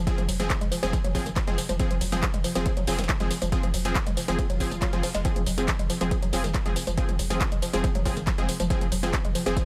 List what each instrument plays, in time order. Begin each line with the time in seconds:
0.07 synth arpeggio sound F3, supersaw synth F3 C4 G#4, kick, closed hi-hat, ride, tambourine
0.18 sub bass F1, synth arpeggio sound F3, closed hi-hat, mid tom, ride
0.28 sub bass F1, synth arpeggio sound F#3, closed hi-hat, open hi-hat, ride, tambourine
0.40 sub bass F1, synth arpeggio sound F3, supersaw synth F3 C4 G#4, closed hi-hat, mid tom, ride, tambourine
0.50 synth arpeggio sound F3, kick, snare, clap, closed hi-hat, ride, tambourine
0.61 sub bass F1, synth arpeggio sound G#3, closed hi-hat, mid tom, ride
0.72 synth arpeggio sound F3, closed hi-hat, open hi-hat, ride, tambourine
0.83 sub bass F1, synth arpeggio sound F3, supersaw synth F3 C4 G#4, closed hi-hat, mid tom, ride, tambourine
0.93 synth arpeggio sound F3, kick, closed hi-hat, ride, tambourine
1.04 sub bass F1, synth arpeggio sound F#3, closed hi-hat, mid tom, ride
1.15 sub bass F1, supersaw synth F3 C4 G#4, synth arpeggio sound F#3, kick, closed hi-hat, open hi-hat, ride, tambourine
1.26 sub bass F1, synth arpeggio sound D#3, closed hi-hat, mid tom, ride, tambourine
1.36 synth arpeggio sound F3, kick, snare, clap, closed hi-hat, ride, tambourine
1.47 sub bass F1, supersaw synth F3 C4 G#4, synth arpeggio sound G#3, closed hi-hat, mid tom, ride
1.58 synth arpeggio sound F3, snare, closed hi-hat, open hi-hat, ride, tambourine
1.69 sub bass F1, synth arpeggio sound F3, snare, closed hi-hat, mid tom, ride, tambourine
1.80 supersaw synth F3 C4 G#4, synth arpeggio sound F3, kick, closed hi-hat, ride, tambourine
1.91 sub bass F1, synth arpeggio sound F3, closed hi-hat, mid tom, ride
2.01 sub bass F1, synth arpeggio sound F#3, closed hi-hat, open hi-hat, ride, tambourine
2.12 sub bass F1, supersaw synth F3 C4 G#4, synth arpeggio sound F3, closed hi-hat, mid tom, ride, tambourine
2.23 synth arpeggio sound F3, kick, snare, clap, closed hi-hat, ride, tambourine
2.34 sub bass F1, synth arpeggio sound G#3, closed hi-hat, mid tom, ride
2.44 synth arpeggio sound F3, closed hi-hat, open hi-hat, ride, tambourine
2.55 sub bass F1, synth arpeggio sound F3, supersaw synth F3 C4 G#4, closed hi-hat, mid tom, ride, tambourine
2.66 synth arpeggio sound F3, kick, closed hi-hat, ride, tambourine
2.77 sub bass F1, synth arpeggio sound F#3, closed hi-hat, mid tom, ride
2.87 sub bass F1, supersaw synth F3 C4 G#4, synth arpeggio sound F#3, snare, closed hi-hat, open hi-hat, ride, tambourine
2.93 snare, closed hi-hat
2.99 sub bass F1, synth arpeggio sound D#3, snare, closed hi-hat, mid tom, ride, tambourine
3.04 snare, closed hi-hat
3.09 synth arpeggio sound F3, kick, snare, clap, closed hi-hat, ride, tambourine
3.20 sub bass F1, supersaw synth F3 C4 G#4, synth arpeggio sound G#3, closed hi-hat, mid tom, ride
3.31 synth arpeggio sound F3, snare, open hi-hat, ride, tambourine
3.42 sub bass F1, synth arpeggio sound F3, closed hi-hat, mid tom, ride, tambourine
3.52 supersaw synth F3 C4 G#4, synth arpeggio sound F3, kick, closed hi-hat, ride, tambourine
3.63 sub bass F1, synth arpeggio sound F3, closed hi-hat, mid tom, ride
3.74 sub bass F1, synth arpeggio sound F#3, closed hi-hat, open hi-hat, ride, tambourine
3.85 sub bass F1, supersaw synth F3 C4 G#4, synth arpeggio sound F3, closed hi-hat, mid tom, ride, tambourine
3.95 synth arpeggio sound F3, kick, snare, clap, closed hi-hat, ride, tambourine
4.07 sub bass F1, synth arpeggio sound G#3, closed hi-hat, mid tom, ride
4.17 synth arpeggio sound F3, closed hi-hat, open hi-hat, ride, tambourine
4.28 sub bass F1, supersaw synth F3 C4 G#4, synth arpeggio sound F3, closed hi-hat, mid tom, ride, tambourine
4.39 synth arpeggio sound F3, kick, closed hi-hat, ride, tambourine, swell
4.50 sub bass F1, synth arpeggio sound F#3, closed hi-hat, mid tom, ride
4.60 sub bass F1, supersaw synth F3 C4 G#4, synth arpeggio sound F3, kick, closed hi-hat, open hi-hat, ride, tambourine
4.71 sub bass F1, synth arpeggio sound F3, closed hi-hat, mid tom, ride, tambourine
4.82 synth arpeggio sound F#3, kick, snare, clap, closed hi-hat, ride, tambourine
4.93 sub bass F1, supersaw synth F3 C4 G#4, synth arpeggio sound F3, closed hi-hat, mid tom, ride
5.03 synth arpeggio sound F3, snare, closed hi-hat, open hi-hat, ride, tambourine
5.14 sub bass F1, synth arpeggio sound G#3, snare, closed hi-hat, mid tom, ride, tambourine
5.25 supersaw synth F3 C4 G#4, synth arpeggio sound F3, kick, closed hi-hat, ride, tambourine
5.36 sub bass F1, synth arpeggio sound F3, closed hi-hat, mid tom, ride
5.46 sub bass F1, synth arpeggio sound F#3, closed hi-hat, open hi-hat, ride, tambourine
5.58 sub bass F1, supersaw synth F3 C4 G#4, synth arpeggio sound F3, closed hi-hat, mid tom, ride, tambourine
5.68 synth arpeggio sound F3, kick, snare, clap, closed hi-hat, ride, tambourine
5.79 sub bass F1, synth arpeggio sound G#3, closed hi-hat, mid tom, ride
5.90 synth arpeggio sound F3, closed hi-hat, open hi-hat, ride, tambourine
6.01 sub bass F1, synth arpeggio sound F3, supersaw synth F3 C4 G#4, closed hi-hat, mid tom, ride, tambourine
6.11 synth arpeggio sound F3, kick, closed hi-hat, ride, tambourine
6.22 sub bass F1, synth arpeggio sound F#3, closed hi-hat, mid tom, ride
6.33 sub bass F1, supersaw synth F3 C4 G#4, synth arpeggio sound F#3, closed hi-hat, open hi-hat, ride, tambourine
6.44 sub bass F1, synth arpeggio sound D#3, snare, closed hi-hat, mid tom, ride, tambourine
6.54 synth arpeggio sound F3, kick, snare, clap, closed hi-hat, ride, tambourine
6.66 sub bass F1, supersaw synth F3 C4 G#4, synth arpeggio sound G#3, closed hi-hat, mid tom, ride
6.76 synth arpeggio sound F3, snare, open hi-hat, ride, tambourine
6.87 sub bass F1, synth arpeggio sound F3, closed hi-hat, mid tom, ride, tambourine
6.98 supersaw synth F3 C4 G#4, synth arpeggio sound F3, kick, closed hi-hat, ride, tambourine
7.09 sub bass F1, synth arpeggio sound F3, closed hi-hat, mid tom, ride
7.19 sub bass F1, synth arpeggio sound F#3, closed hi-hat, open hi-hat, ride, tambourine
7.30 sub bass F1, supersaw synth F3 C4 G#4, synth arpeggio sound F3, closed hi-hat, mid tom, ride, tambourine
7.41 synth arpeggio sound F3, kick, snare, clap, closed hi-hat, ride, tambourine
7.52 sub bass F1, synth arpeggio sound G#3, closed hi-hat, mid tom, ride
7.62 synth arpeggio sound F3, closed hi-hat, open hi-hat, ride, tambourine
7.73 sub bass F1, supersaw synth F3 C4 G#4, synth arpeggio sound F3, closed hi-hat, mid tom, ride, tambourine
7.84 synth arpeggio sound F3, kick, closed hi-hat, ride, tambourine
7.95 sub bass F1, synth arpeggio sound F#3, closed hi-hat, mid tom, ride
8.05 sub bass F1, supersaw synth F3 C4 G#4, synth arpeggio sound F#3, kick, closed hi-hat, open hi-hat, ride, tambourine
8.17 sub bass F1, synth arpeggio sound D#3, closed hi-hat, mid tom, ride, tambourine
8.27 synth arpeggio sound F3, kick, snare, clap, closed hi-hat, ride, tambourine
8.38 sub bass F1, supersaw synth F3 C4 G#4, synth arpeggio sound G#3, closed hi-hat, mid tom, ride
8.49 synth arpeggio sound F3, snare, closed hi-hat, open hi-hat, ride, tambourine
8.60 sub bass F1, synth arpeggio sound F3, snare, closed hi-hat, mid tom, ride, tambourine
8.70 supersaw synth F3 C4 G#4, synth arpeggio sound F3, kick, closed hi-hat, ride, tambourine
8.81 sub bass F1, synth arpeggio sound F3, closed hi-hat, mid tom, ride
8.92 sub bass F1, synth arpeggio sound F#3, closed hi-hat, open hi-hat, ride, tambourine
9.03 sub bass F1, supersaw synth F3 C4 G#4, synth arpeggio sound F3, closed hi-hat, mid tom, ride, tambourine
9.13 synth arpeggio sound F3, kick, snare, clap, closed hi-hat, ride, tambourine
9.25 sub bass F1, synth arpeggio sound G#3, closed hi-hat, mid tom, ride
9.35 synth arpeggio sound F3, closed hi-hat, open hi-hat, ride, tambourine
9.46 sub bass F1, supersaw synth F3 C4 G#4, synth arpeggio sound F3, closed hi-hat, mid tom, ride, tambourine
9.57 synth arpeggio sound F3, kick, closed hi-hat, ride, tambourine